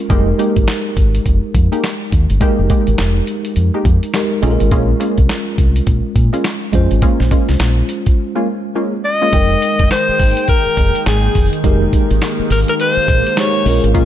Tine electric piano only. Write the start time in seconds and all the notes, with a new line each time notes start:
Already playing: G#3 C#4 F4 A#4
0.10 G3 D#4 G4 A#4
0.16 G#3
2.41 G#3 D#4 G4 A#4
4.14 G#3 D#4 G4 A#4
4.42 G#3 C#4 F4 A4
4.51 A#4
6.73 G#3 C#4 F4 C5
9.32 G#3 D#4 A#4 G5
11.64 G#3 D#4 G4 A#4
13.37 G#3 D#4 G4 C5
13.66 G#3 C#4 F4 A#4